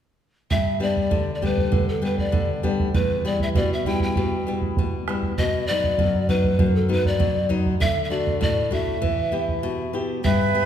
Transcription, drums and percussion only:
0.51 bombo low
0.97 bombo low
1.11 bombo low
1.43 bombo low
1.58 bombo low
1.72 bombo low
2.18 bombo low
2.33 bombo low
2.64 bombo low
2.80 bombo low
2.94 bombo low
3.40 bombo low
3.55 bombo low
3.85 bombo low
4.00 bombo low
4.16 bombo low
4.62 bombo low
4.77 bombo low
5.08 bombo rim
5.22 bombo low
5.38 bombo low
5.84 bombo low
5.98 bombo low
6.29 bombo low
6.44 bombo low
6.59 bombo low
7.05 bombo low
7.20 bombo low
7.51 bombo low
7.66 bombo low
7.81 bombo low
8.27 bombo low
8.42 bombo low
8.73 bombo low
8.88 bombo low
9.03 bombo low
9.49 bombo low
10.25 bombo low

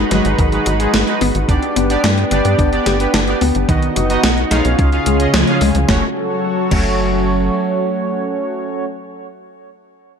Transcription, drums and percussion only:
0.11 snare, closed hi-hat
0.25 closed hi-hat
0.39 kick, closed hi-hat
0.52 closed hi-hat
0.66 closed hi-hat
0.80 closed hi-hat
0.94 snare, closed hi-hat
1.07 closed hi-hat
1.21 open hi-hat
1.35 closed hi-hat
1.49 kick, closed hi-hat
1.63 closed hi-hat
1.76 closed hi-hat
1.90 closed hi-hat
2.04 snare, closed hi-hat
2.18 closed hi-hat
2.31 closed hi-hat
2.45 closed hi-hat
2.59 kick, closed hi-hat
2.73 closed hi-hat
2.86 snare, closed hi-hat
3.00 closed hi-hat
3.14 snare, closed hi-hat
3.27 closed hi-hat
3.41 open hi-hat
3.55 closed hi-hat
3.69 kick, closed hi-hat
3.82 closed hi-hat
3.96 closed hi-hat
4.10 closed hi-hat
4.24 snare, closed hi-hat
4.38 closed hi-hat
4.51 snare, closed hi-hat
4.65 closed hi-hat
4.79 kick, closed hi-hat
4.92 closed hi-hat
5.06 closed hi-hat
5.20 closed hi-hat
5.34 snare, closed hi-hat
5.47 closed hi-hat
5.61 open hi-hat
5.75 closed hi-hat
5.89 kick, snare
6.71 kick, crash

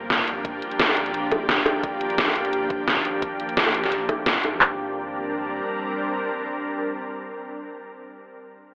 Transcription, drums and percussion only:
0.10 snare, closed hi-hat
0.19 kick
0.28 closed hi-hat
0.45 kick, closed hi-hat
0.62 closed hi-hat
0.71 closed hi-hat
0.80 snare, closed hi-hat
0.89 high bongo
0.97 closed hi-hat
1.06 closed hi-hat
1.14 closed hi-hat
1.32 kick, closed hi-hat, high bongo
1.49 snare, closed hi-hat
1.58 kick
1.66 closed hi-hat, high bongo
1.84 kick, closed hi-hat
2.01 closed hi-hat
2.10 closed hi-hat
2.18 snare, closed hi-hat
2.28 high bongo
2.36 closed hi-hat
2.45 closed hi-hat
2.53 closed hi-hat
2.70 kick, closed hi-hat
2.88 snare, closed hi-hat
2.97 kick
3.05 closed hi-hat
3.22 kick, closed hi-hat
3.40 closed hi-hat
3.49 closed hi-hat
3.57 snare, closed hi-hat
3.66 high bongo
3.74 closed hi-hat
3.84 snare, closed hi-hat
3.92 closed hi-hat
4.09 kick, closed hi-hat, high bongo
4.26 snare, closed hi-hat
4.35 kick
4.44 closed hi-hat, high bongo
4.61 kick, clap

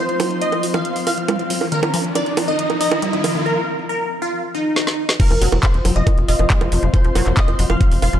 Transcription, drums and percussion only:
0.09 closed hi-hat
0.20 open hi-hat, high bongo
0.31 closed hi-hat
0.42 closed hi-hat
0.52 closed hi-hat, high bongo
0.63 open hi-hat
0.74 closed hi-hat, high bongo
0.85 closed hi-hat
0.96 open hi-hat
1.07 open hi-hat, high bongo
1.18 closed hi-hat
1.28 closed hi-hat, high bongo
1.39 closed hi-hat
1.50 open hi-hat
1.61 high bongo
1.72 closed hi-hat
1.83 closed hi-hat, high bongo
1.94 open hi-hat
2.05 closed hi-hat
2.15 closed hi-hat, high bongo
2.26 closed hi-hat
2.37 open hi-hat, high bongo
2.48 closed hi-hat
2.59 closed hi-hat
2.70 closed hi-hat, high bongo
2.81 open hi-hat
2.92 closed hi-hat, high bongo
3.02 closed hi-hat
3.13 closed hi-hat
3.24 open hi-hat, high bongo
4.76 snare
4.87 snare
5.09 snare
5.20 kick, closed hi-hat, crash
5.31 closed hi-hat, high bongo
5.42 open hi-hat
5.52 high bongo
5.63 kick, clap, closed hi-hat
5.74 closed hi-hat
5.85 open hi-hat, high bongo
5.96 closed hi-hat
6.07 kick, closed hi-hat, high bongo
6.18 closed hi-hat
6.28 open hi-hat
6.39 closed hi-hat, high bongo
6.50 kick, clap, closed hi-hat
6.61 closed hi-hat, high bongo
6.72 open hi-hat
6.83 closed hi-hat
6.94 kick, closed hi-hat, high bongo
7.05 closed hi-hat
7.15 open hi-hat, high bongo
7.26 clap
7.37 kick, clap, closed hi-hat
7.48 closed hi-hat, high bongo
7.59 open hi-hat
7.70 closed hi-hat, high bongo
7.81 kick, closed hi-hat
7.92 open hi-hat
8.02 open hi-hat, high bongo
8.13 closed hi-hat

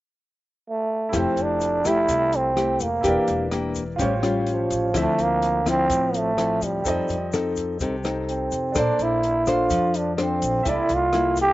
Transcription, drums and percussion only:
1.13 kick, cross-stick, closed hi-hat, shaker
1.37 closed hi-hat, shaker
1.61 closed hi-hat, shaker
1.85 kick, cross-stick, closed hi-hat, shaker
2.09 kick, closed hi-hat, shaker
2.32 closed hi-hat, shaker
2.57 cross-stick, closed hi-hat
2.80 kick, closed hi-hat, shaker
3.04 kick, closed hi-hat, shaker
3.28 closed hi-hat, shaker
3.51 cross-stick, closed hi-hat
3.75 kick, closed hi-hat, shaker
3.99 kick, closed hi-hat, shaker
4.23 cross-stick, closed hi-hat, shaker
4.46 closed hi-hat
4.70 kick, closed hi-hat, shaker
4.94 kick, cross-stick, closed hi-hat, shaker
5.19 closed hi-hat, shaker
5.42 closed hi-hat
5.66 kick, cross-stick, closed hi-hat, shaker
5.90 kick, closed hi-hat, shaker
6.14 closed hi-hat, shaker
6.38 cross-stick, closed hi-hat
6.62 kick, closed hi-hat, shaker
6.85 kick, closed hi-hat, shaker
7.08 closed hi-hat, shaker
7.33 cross-stick, closed hi-hat, shaker
7.56 kick, closed hi-hat, shaker
7.80 kick, closed hi-hat, shaker
8.04 cross-stick, closed hi-hat, shaker
8.29 closed hi-hat
8.52 kick, closed hi-hat, shaker
8.75 kick, cross-stick, closed hi-hat, shaker
8.99 closed hi-hat, shaker
9.23 closed hi-hat
9.46 kick, cross-stick, closed hi-hat, shaker
9.70 kick, closed hi-hat, shaker
9.94 closed hi-hat, shaker
10.18 cross-stick, closed hi-hat
10.42 kick, closed hi-hat, shaker
10.65 kick, closed hi-hat, shaker
10.89 closed hi-hat, shaker
11.13 cross-stick, closed hi-hat
11.36 kick, closed hi-hat, shaker

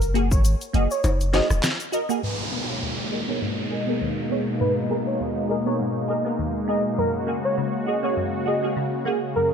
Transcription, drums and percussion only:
0.02 closed hi-hat, shaker
0.15 closed hi-hat
0.31 kick, shaker
0.45 closed hi-hat, shaker
0.61 closed hi-hat, shaker
0.74 closed hi-hat
0.91 shaker
1.04 closed hi-hat, high timbale, shaker
1.21 closed hi-hat, shaker
1.34 snare, closed hi-hat, high timbale
1.50 cross-stick, shaker
1.63 snare, clap, closed hi-hat, shaker
1.80 closed hi-hat, shaker
1.93 closed hi-hat, shaker
2.10 shaker

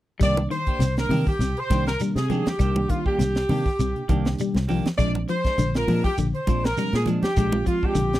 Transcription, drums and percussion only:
0.21 kick, closed hi-hat, shekere
0.37 closed hi-hat, high conga
0.51 closed hi-hat, shekere
0.67 kick, closed hi-hat
0.80 snare, closed hi-hat, shekere
0.97 snare, closed hi-hat
1.10 open hi-hat, high conga, low conga, shekere
1.27 kick
1.40 snare, closed hi-hat, shekere
1.57 closed hi-hat
1.70 kick, snare, closed hi-hat, high conga, shekere
1.87 snare, closed hi-hat
1.99 closed hi-hat, shekere
2.16 snare, closed hi-hat, high conga
2.30 closed hi-hat, high conga, low conga, shekere
2.46 snare, closed hi-hat, low conga
2.59 kick, closed hi-hat, shekere
2.76 high conga
2.89 kick, closed hi-hat, shekere
3.06 kick
3.19 snare, closed hi-hat, high conga, shekere
3.35 snare, closed hi-hat
3.49 open hi-hat, high conga, low conga, shekere
3.66 kick
3.80 closed hi-hat, shekere
3.96 closed hi-hat
4.09 kick, closed hi-hat, high conga, shekere
4.25 snare, closed hi-hat
4.38 closed hi-hat, shekere
4.54 snare, closed hi-hat, high conga
4.69 open hi-hat, low conga, shekere
4.85 snare, closed hi-hat, low conga
4.99 kick, closed hi-hat, shekere
5.15 closed hi-hat, high conga
5.28 closed hi-hat, shekere
5.44 kick, snare, closed hi-hat
5.58 closed hi-hat, high conga, shekere
5.74 snare, closed hi-hat
5.88 open hi-hat, high conga, low conga, shekere
6.04 kick
6.18 closed hi-hat, shekere
6.35 closed hi-hat
6.47 kick, closed hi-hat, high conga, shekere
6.64 snare, closed hi-hat
6.77 snare, closed hi-hat, shekere
6.93 snare, closed hi-hat, high conga
7.06 closed hi-hat, high conga, low conga, shekere
7.23 snare, closed hi-hat, high conga, low conga
7.36 kick, closed hi-hat, shekere
7.52 high conga
7.66 kick, closed hi-hat, shekere
7.83 kick
7.95 closed hi-hat, shekere
8.13 snare, closed hi-hat

